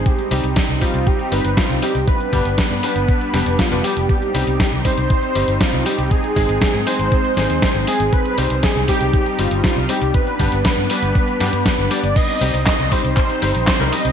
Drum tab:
CC |----------------|----------------|----------------|----------------|
HH |xxoxxxoxxxoxxxox|xxoxxxoxxxoxxxox|xxoxxxoxxxoxxxox|xxoxxxoxxxoxxxox|
TB |----------------|----------------|----------------|----------------|
CP |----------------|----------------|----------------|----------------|
SD |----o-------o---|----o-----o-o---|----o-------o---|----o-----o-o---|
BD |o---o-o-o---o---|o-o-o---o---o---|o---o-o-o---o---|o-o-o---o---o---|

CC |----------------|----------------|x---------------|
HH |xxoxxxoxxxoxxxox|xxoxxxoxxxoxxxox|xxoxx-oxxxoxxxox|
TB |----------------|----------------|xxxxxxxxxxxxxxxx|
CP |----------------|----------------|----x---x---x---|
SD |----o-------o---|----o-----o-o---|----o-------o---|
BD |o---o-o-o---o---|o-o-o---o---o---|o---o-o-o---o---|